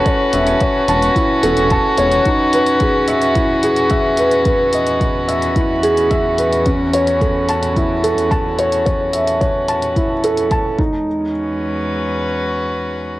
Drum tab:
HH |x-xxx-xxx-xxx-xx|x-xxx-xxx-xxx-xx|x-xxx-xxx-xxx-xx|x-xxx-xxx-xxx-xx|
BD |o---o---o---o---|o---o---o---o---|o---o---o---o---|o---o---o---o---|

HH |x-xxx-xxx-xxx---|----------------|
BD |o---o---o---o-o-|----------------|